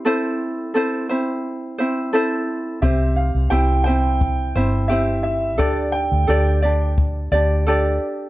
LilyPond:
<<
  \new Staff \with { instrumentName = "Upright piano" } { \time 4/4 \key c \major \tempo 4 = 87 r1 | e''8 f''8 g''8 g''4. e''8 e''8 | d''8 g''4. r2 | }
  \new Staff \with { instrumentName = "Ukulele" } { \time 4/4 \key c \major <c' e' a' c''>4 <c' e' a' c''>8 <c' e' c''>4 <c' e' c''>8 <c' e' a' c''>4 | <c' g' c''>4 <c' e' g' c''>8 <c' e' c''>4 <c' e' c''>8 <c' e' g' c''>4 | <d' g' a' d''>4 <d' g' a' d''>8 <d' g' d''>4 <d' g' d''>8 <d' g' a' d''>4 | }
  \new Staff \with { instrumentName = "Fingered electric bass" } { \clef bass \time 4/4 \key c \major r1 | c,8. c,16 c,4. g,,4. | d,8. d,16 d,4. d,4 r8 | }
  \new DrumStaff \with { instrumentName = "Drums" } \drummode { \time 4/4 r4 r4 r4 r4 | bd4 r4 bd4 r4 | bd4 r4 bd4 r4 | }
>>